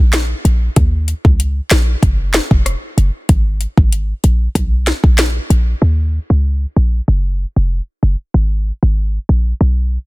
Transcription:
0.00 0.34 A#1 medium
0.13 cross-stick medium
0.13 snare loud
0.13 clap medium
0.13 closed hi-hat medium
0.45 0.69 A#1 medium
0.45 closed hi-hat medium
0.76 1.14 D#2 loud
0.76 kick loud
0.76 closed hi-hat medium
1.08 closed hi-hat soft
1.25 1.61 C#2 medium
1.25 kick loud
1.40 closed hi-hat medium
1.71 1.96 A#1 loud
1.71 snare loud
1.71 clap medium
1.71 closed hi-hat medium
2.03 2.40 F#1 loud
2.03 kick medium
2.03 closed hi-hat medium
2.34 snare loud
2.34 clap medium
2.34 closed hi-hat soft
2.51 2.75 F1 medium
2.51 kick medium
2.66 cross-stick medium
2.66 closed hi-hat medium
2.98 3.10 F#1 medium
2.98 closed hi-hat medium
3.29 3.66 G#1 loud
3.29 kick loud
3.29 closed hi-hat medium
3.61 closed hi-hat soft
3.77 4.13 G#1 loud
3.77 kick loud
3.92 closed hi-hat medium
4.24 4.48 A#1 medium
4.24 closed hi-hat medium
4.55 4.93 B1 loud
4.55 kick loud
4.55 closed hi-hat medium
4.87 snare medium
4.87 closed hi-hat soft
5.04 5.40 A#1 medium
5.04 kick medium
5.18 snare loud
5.18 clap medium
5.18 closed hi-hat medium
5.50 5.75 A#1 loud
5.50 closed hi-hat medium
5.82 6.19 D#2 loud
6.30 6.66 C#2 medium
6.76 7.01 A#1 loud
7.08 7.45 F#1 loud
7.56 7.81 F1 medium
8.03 8.16 F#1 medium
8.34 8.72 G#1 loud
8.83 9.18 G#1 loud
9.29 9.53 A#1 medium
9.61 9.98 B1 loud

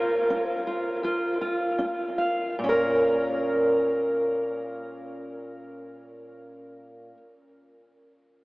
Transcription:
0.00 0.23 A#2 medium
0.00 0.66 F4 soft
0.00 2.59 A#4 medium
0.00 2.09 F5 soft
0.30 0.96 C#4 medium
0.67 1.03 F4 soft
1.03 1.72 F2 medium
1.03 1.40 F4 soft
1.41 2.55 F4 soft
1.79 2.51 C#4 soft
2.18 2.54 F5 soft
2.59 7.12 A#2 medium
2.64 7.17 C#4 medium
2.69 7.18 A#4 medium

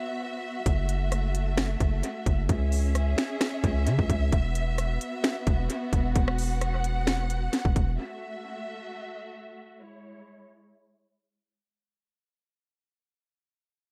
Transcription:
0.00 0.62 B3 medium
0.00 2.45 F#4 medium
0.00 2.45 E5 loud
0.66 1.77 F#1 loud
0.66 2.47 A3 medium
0.66 kick loud
0.66 closed hi-hat medium
0.89 closed hi-hat medium
1.12 cross-stick medium
1.12 closed hi-hat medium
1.35 closed hi-hat medium
1.58 finger snap loud
1.58 snare loud
1.58 closed hi-hat medium
1.80 2.02 F#1 loud
1.80 kick loud
1.80 closed hi-hat medium
2.03 closed hi-hat medium
2.26 2.48 F#1 loud
2.26 kick loud
2.26 closed hi-hat medium
2.49 3.15 C#2 loud
2.49 4.31 C#4 medium
2.49 4.31 G#4 medium
2.49 6.12 E5 loud
2.49 kick loud
2.49 closed hi-hat medium
2.72 open hi-hat medium
2.95 cross-stick medium
2.95 closed hi-hat medium
3.18 finger snap medium
3.18 snare loud
3.18 closed hi-hat medium
3.41 finger snap loud
3.41 snare loud
3.41 closed hi-hat medium
3.64 3.88 C#2 loud
3.64 kick loud
3.64 closed hi-hat medium
3.87 3.98 C#3 loud
3.87 closed hi-hat medium
3.99 4.09 C#2 loud
3.99 kick medium
4.10 4.32 C#2 loud
4.10 kick medium
4.10 closed hi-hat medium
4.32 4.98 E1 loud
4.32 7.95 B3 medium
4.32 7.95 F#4 medium
4.32 kick loud
4.32 closed hi-hat medium
4.55 closed hi-hat medium
4.78 cross-stick medium
4.78 closed hi-hat medium
5.01 closed hi-hat medium
5.24 finger snap loud
5.24 snare loud
5.24 closed hi-hat medium
5.47 5.69 E1 loud
5.47 kick loud
5.47 closed hi-hat medium
5.70 closed hi-hat medium
5.93 6.15 E1 loud
5.93 kick medium
5.93 closed hi-hat medium
6.16 7.49 E1 loud
6.16 7.97 F#5 medium
6.16 kick loud
6.16 closed hi-hat medium
6.28 cross-stick loud
6.38 open hi-hat medium
6.61 cross-stick medium
6.61 closed hi-hat medium
6.84 closed hi-hat medium
7.07 finger snap loud
7.07 snare loud
7.07 closed hi-hat medium
7.30 closed hi-hat medium
7.53 snare medium
7.53 closed hi-hat medium
7.65 7.75 E1 loud
7.65 kick loud
7.76 7.98 E1 loud
7.76 kick loud
7.76 closed hi-hat medium
7.99 9.80 A3 medium
7.99 9.80 F#4 medium
7.99 9.80 E5 medium
9.82 11.63 G#3 medium
9.82 11.63 E4 medium
9.82 11.63 C#5 medium

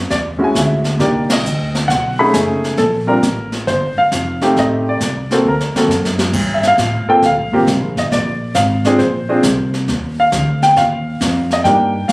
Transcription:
0.10 0.38 E2 medium
0.10 0.17 D5 medium
0.10 brush sweep soft
0.10 kick soft
0.10 snare soft
0.39 0.96 G#3 medium
0.39 0.96 C#4 soft
0.39 0.96 E4 soft
0.39 0.97 F#4 medium
0.39 muted upright bass stroke soft
0.44 0.57 G#5 medium
0.55 0.98 D2 medium
0.55 0.98 E5 medium
0.55 kick soft
0.55 snare soft
0.55 hi-hat pedal soft
0.84 snare soft
0.99 1.43 C2 medium
0.99 1.26 A#3 soft
0.99 1.27 D4 soft
0.99 1.27 D#4 soft
0.99 1.27 G4 medium
0.99 1.28 D5 medium
0.99 brush sweep soft
0.99 kick soft
0.99 snare soft
1.30 1.73 D#5 medium
1.30 snare medium
1.30 ride medium
1.43 1.87 D2 medium
1.43 hi-hat pedal soft
1.75 snare soft
1.88 2.32 B1 medium
1.88 2.19 F#5 medium
1.88 brush sweep soft
1.88 kick soft
1.88 snare soft
2.19 2.75 A3 medium
2.19 2.76 C#4 medium
2.19 2.76 D#4 medium
2.19 2.76 G#4 medium
2.19 2.34 B5 medium
2.33 2.77 F#1 medium
2.33 2.79 G#5 medium
2.33 kick soft
2.33 snare medium
2.33 hi-hat pedal medium
2.64 snare soft
2.77 3.21 A#1 medium
2.77 2.85 A4 medium
2.77 brush sweep soft
2.77 kick soft
2.77 snare soft
3.07 3.21 G3 medium
3.07 3.21 C4 soft
3.07 3.21 D4 soft
3.07 3.22 F4 medium
3.07 3.49 A#4 medium
3.22 3.66 A1 medium
3.22 kick soft
3.22 snare soft
3.22 hi-hat pedal soft
3.52 snare soft
3.67 3.95 G1 medium
3.67 3.98 C5 medium
3.67 brush sweep soft
3.67 kick soft
3.67 snare soft
3.98 4.58 F5 medium
3.98 muted upright bass stroke soft
4.12 4.55 F1 medium
4.12 kick soft
4.12 snare soft
4.12 hi-hat pedal soft
4.41 4.98 A3 medium
4.41 4.98 C4 soft
4.41 4.98 D#4 soft
4.41 4.98 G4 medium
4.41 snare soft
4.56 4.99 A1 medium
4.56 4.65 D#5 medium
4.56 brush sweep soft
4.56 kick soft
4.56 snare soft
4.89 5.29 D5 medium
5.00 5.44 C2 medium
5.00 kick soft
5.00 snare soft
5.00 hi-hat pedal soft
5.31 5.44 A#3 medium
5.31 5.44 C4 soft
5.31 5.45 F#4 soft
5.31 5.45 A4 medium
5.31 5.46 C5 medium
5.31 snare soft
5.45 5.73 D2 medium
5.45 6.17 A#4 medium
5.60 snare soft
5.74 5.88 A#3 medium
5.74 5.89 C4 soft
5.74 5.89 F#4 soft
5.74 5.89 A4 medium
5.74 muted upright bass stroke soft
5.74 snare medium
5.87 6.31 F#2 medium
5.87 snare soft
5.87 hi-hat pedal soft
6.05 snare soft
6.19 snare medium
6.33 6.77 G2 medium
6.33 brush sweep soft
6.33 kick medium
6.33 snare soft
6.33 crash medium
6.54 6.64 E5 medium
6.63 snare soft
6.68 7.07 F5 loud
6.78 7.06 A2 medium
6.78 kick soft
6.78 snare medium
6.78 hi-hat pedal soft
7.06 7.21 A#3 medium
7.06 7.22 C4 medium
7.06 7.22 F4 medium
7.06 7.21 A4 medium
7.06 7.24 G5 medium
7.06 muted upright bass stroke soft
7.22 7.39 D2 medium
7.22 8.00 F5 medium
7.22 brush sweep soft
7.22 kick soft
7.22 snare soft
7.37 7.51 A#1 medium
7.52 7.66 G1 medium
7.52 7.66 A#3 medium
7.52 7.66 C4 medium
7.52 7.66 F4 medium
7.52 7.66 G4 medium
7.67 7.80 C2 medium
7.67 kick soft
7.67 snare medium
7.67 hi-hat pedal soft
7.80 7.95 A#1 medium
7.96 8.10 G1 medium
7.96 8.03 D#5 medium
7.96 snare soft
8.11 8.54 A#1 medium
8.11 8.53 D5 medium
8.11 brush sweep soft
8.11 kick soft
8.11 snare soft
8.55 8.98 G#1 medium
8.55 9.01 F5 medium
8.55 kick soft
8.55 snare medium
8.55 hi-hat pedal medium
8.85 8.99 C4 medium
8.85 8.99 D4 medium
8.85 8.99 F4 medium
8.85 8.99 G#4 medium
8.85 snare soft
8.99 9.42 A#1 medium
8.99 9.69 C5 medium
8.99 brush sweep soft
8.99 kick soft
8.99 snare soft
9.29 9.43 C4 medium
9.29 9.42 D4 medium
9.29 9.43 F4 medium
9.29 9.43 G#4 medium
9.43 9.87 C2 medium
9.43 kick soft
9.43 snare medium
9.43 hi-hat pedal medium
9.74 snare soft
9.88 10.31 D#2 medium
9.88 brush sweep soft
9.88 kick soft
9.88 snare soft
10.20 10.64 F5 medium
10.32 10.75 D2 medium
10.32 kick soft
10.32 snare medium
10.32 hi-hat pedal soft
10.62 10.76 G5 medium
10.62 snare soft
10.76 11.20 D#2 medium
10.76 11.53 F5 medium
10.76 brush sweep soft
10.76 kick soft
10.76 snare soft
11.21 11.64 F2 medium
11.21 kick soft
11.21 snare medium
11.21 hi-hat pedal soft
11.51 11.58 D#5 medium
11.51 snare soft
11.64 12.08 G2 medium
11.64 11.92 A#3 medium
11.64 11.92 D4 soft
11.64 11.92 D#4 soft
11.64 11.93 G4 medium
11.64 12.06 G5 medium
11.64 brush sweep soft
11.64 kick soft
11.64 snare soft
12.08 12.12 A2 medium
12.08 12.12 F5 medium
12.08 kick soft
12.08 snare medium
12.08 hi-hat pedal soft

